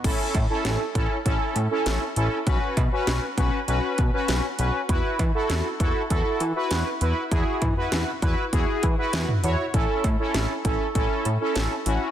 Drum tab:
CC |x---------------|----------------|----------------|----------------|
HH |x-x-x-x-x-x-x-x-|x-x-x-x-x-x-x-x-|x-x-x-x-x-x-x-x-|x-x-x-x-x-x-x-x-|
CB |--x-------------|--x-------------|--x-------------|--x-------------|
SD |----o-------o---|----o-------o---|----o-------o---|----o-------o---|
T2 |----------------|----------------|----------------|--o----------o--|
BD |o-o---o-o-------|o-o---o---o-----|o-o---o-o-------|o-o---o-o-o-----|

CC |----------------|
HH |x-x-x-x-x-x-x-x-|
CB |--x-------------|
SD |----o-------o---|
T2 |----------------|
BD |o-o---o-o-------|